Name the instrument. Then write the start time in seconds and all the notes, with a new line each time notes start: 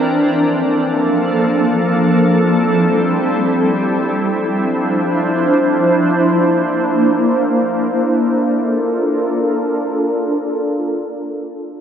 ambient pad
Already playing: D4
0.06 F3 A#3 A4
2.02 G3 C4 E4
3.99 F3 D4 C5
5.96 A#3
7.92 D4 F4 A4 A#4